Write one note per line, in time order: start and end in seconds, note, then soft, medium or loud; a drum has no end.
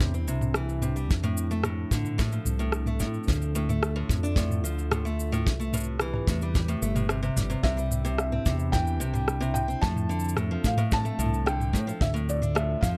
0.00 0.29 E2 medium
0.00 0.13 C3 loud
0.00 1.07 C3 medium
0.00 3.23 C4 medium
0.00 5.42 D4 medium
0.00 1.07 E4 medium
0.00 kick loud
0.00 mid tom medium
0.00 cabasa soft
0.14 0.27 C4 medium
0.14 cabasa soft
0.28 1.11 C2 medium
0.28 0.54 C3 medium
0.28 cabasa medium
0.41 mid tom medium
0.41 cabasa soft
0.54 0.81 E3 medium
0.54 cross-stick loud
0.54 cabasa soft
0.69 cabasa soft
0.82 0.95 C3 medium
0.82 mid tom medium
0.82 cabasa medium
0.96 1.10 G3 medium
0.96 cabasa soft
1.10 1.84 F2 medium
1.10 3.26 F3 medium
1.10 5.42 A4 medium
1.10 kick loud
1.10 cabasa soft
1.23 1.49 A2 loud
1.23 mid tom medium
1.23 cabasa soft
1.37 cabasa medium
1.51 1.64 A3 medium
1.51 cabasa soft
1.64 1.90 A2 medium
1.64 cross-stick loud
1.64 mid tom medium
1.64 cabasa soft
1.91 2.38 A2 medium
1.91 2.18 D3 medium
1.91 kick medium
1.91 cabasa medium
2.05 mid tom medium
2.05 cabasa soft
2.18 2.31 A2 loud
2.18 kick loud
2.18 cabasa soft
2.32 2.58 F3 medium
2.32 cabasa soft
2.45 3.02 C2 medium
2.45 mid tom medium
2.45 cabasa medium
2.59 2.85 A2 medium
2.59 cabasa soft
2.72 cross-stick loud
2.72 cabasa soft
2.86 3.00 A3 medium
2.86 mid tom medium
2.86 cabasa soft
3.00 3.26 A2 medium
3.00 3.18 A2 medium
3.00 kick medium
3.00 cabasa medium
3.14 cabasa soft
3.24 mid tom medium
3.24 cabasa soft
3.28 4.02 D2 loud
3.28 5.44 D3 medium
3.28 3.54 F3 medium
3.28 5.45 F4 medium
3.28 kick loud
3.28 cabasa soft
3.32 cabasa soft
3.42 cabasa soft
3.55 3.68 A2 loud
3.55 cabasa medium
3.69 3.95 A3 medium
3.69 mid tom medium
3.69 cabasa soft
3.83 cross-stick loud
3.83 cabasa soft
3.96 4.22 A2 loud
4.09 4.64 F2 medium
4.09 kick loud
4.09 mid tom medium
4.09 cabasa medium
4.23 4.36 D4 medium
4.23 cabasa soft
4.36 4.63 A2 medium
4.36 kick loud
4.36 cabasa soft
4.51 mid tom medium
4.51 cabasa soft
4.64 5.47 D2 medium
4.64 4.90 F3 medium
4.64 cabasa medium
4.79 cabasa soft
4.91 5.04 A2 loud
4.91 cross-stick loud
4.91 mid tom medium
4.91 cabasa soft
5.05 5.31 A3 medium
5.05 cabasa soft
5.20 cabasa medium
5.32 5.46 A2 loud
5.32 mid tom medium
5.32 cabasa soft
5.45 6.20 C2 medium
5.45 9.78 C3 medium
5.45 9.78 C4 medium
5.45 7.62 G4 medium
5.45 7.62 B4 medium
5.45 kick loud
5.45 cabasa soft
5.60 5.73 A3 medium
5.60 cabasa soft
5.73 6.00 A2 loud
5.73 mid tom medium
5.73 cabasa medium
5.77 cabasa medium
5.80 cabasa soft
5.84 cabasa soft
6.00 6.27 E3 medium
6.00 cross-stick loud
6.00 cabasa soft
6.14 cross-stick soft
6.14 mid tom medium
6.27 6.74 E2 medium
6.27 6.40 A2 loud
6.27 kick loud
6.27 cabasa medium
6.41 6.68 G3 medium
6.41 cabasa soft
6.54 kick loud
6.54 mid tom medium
6.54 cabasa soft
6.68 6.81 A2 medium
6.68 cabasa soft
6.82 7.29 G1 medium
6.82 6.95 A3 medium
6.82 cabasa medium
6.95 7.08 A2 medium
6.95 mid tom medium
6.95 cabasa soft
7.09 7.21 C3 medium
7.09 cross-stick loud
7.09 cabasa soft
7.23 7.35 C3 loud
7.23 cabasa soft
7.36 7.54 G1 medium
7.36 7.49 G3 medium
7.36 kick medium
7.36 mid tom medium
7.36 cabasa medium
7.50 7.62 C3 loud
7.50 cabasa soft
7.63 8.38 C2 medium
7.63 7.76 C3 medium
7.63 9.81 D4 medium
7.63 9.81 E4 medium
7.63 8.17 E5 medium
7.63 kick loud
7.77 8.03 G3 medium
7.77 cabasa soft
7.91 mid tom medium
7.91 cabasa medium
8.05 8.31 C3 loud
8.05 cabasa soft
8.18 8.75 E5 medium
8.18 cross-stick loud
8.18 cabasa soft
8.32 8.45 C4 medium
8.32 mid tom medium
8.46 9.01 E2 medium
8.46 8.72 C3 medium
8.46 kick medium
8.46 cabasa medium
8.59 cabasa soft
8.72 8.99 E3 medium
8.72 9.51 G5 loud
8.72 kick loud
8.72 mid tom medium
8.72 cabasa soft
8.87 cabasa soft
9.00 9.74 C2 medium
9.00 9.13 C3 medium
9.00 cabasa medium
9.14 9.40 G3 medium
9.14 mid tom medium
9.14 cabasa soft
9.28 cross-stick medium
9.28 cabasa soft
9.41 9.67 C3 loud
9.41 cabasa soft
9.54 9.80 G5 loud
9.54 mid tom medium
9.54 cabasa medium
9.68 9.81 C4 medium
9.68 cabasa soft
9.81 10.56 F2 medium
9.81 10.08 A2 medium
9.81 11.98 F3 medium
9.81 11.99 C4 medium
9.81 12.97 D4 medium
9.81 12.97 A4 medium
9.81 10.33 A5 loud
9.81 kick loud
9.81 cabasa soft
9.97 mid tom medium
9.97 cabasa soft
10.09 10.35 D3 medium
10.09 cabasa soft
10.20 cabasa soft
10.24 cabasa soft
10.29 cabasa medium
10.37 10.49 A2 medium
10.37 cross-stick medium
10.37 mid tom medium
10.37 cabasa soft
10.51 10.77 F3 medium
10.64 11.11 A2 medium
10.64 10.93 F5 medium
10.64 kick medium
10.64 cabasa medium
10.77 11.04 A2 loud
10.77 mid tom medium
10.77 cabasa soft
10.91 11.49 A5 loud
10.91 kick loud
10.91 cabasa soft
11.05 11.18 A3 medium
11.05 cabasa soft
11.19 11.75 C2 medium
11.19 11.45 A2 loud
11.19 cabasa medium
11.26 mid tom medium
11.34 cabasa soft
11.46 11.72 D3 medium
11.46 11.84 G5 loud
11.46 cross-stick loud
11.46 cabasa soft
11.60 mid tom medium
11.60 cabasa soft
11.73 11.86 A2 medium
11.73 11.91 A2 medium
11.73 kick medium
11.73 cabasa medium
11.87 12.01 F3 medium
11.87 cabasa soft
12.01 12.74 D2 medium
12.01 12.97 D3 medium
12.01 12.97 F4 medium
12.01 12.07 E5 loud
12.01 kick loud
12.01 mid tom medium
12.01 cabasa soft
12.14 12.40 A2 loud
12.14 cabasa soft
12.29 12.54 D5 medium
12.29 cabasa medium
12.42 12.55 D4 medium
12.42 mid tom medium
12.42 cabasa soft
12.55 12.81 A2 medium
12.55 12.83 E5 medium
12.55 cross-stick loud
12.55 cabasa soft
12.81 12.97 F2 medium
12.81 12.97 F3 medium
12.81 12.87 F5 medium
12.81 kick medium
12.81 mid tom medium
12.81 cabasa medium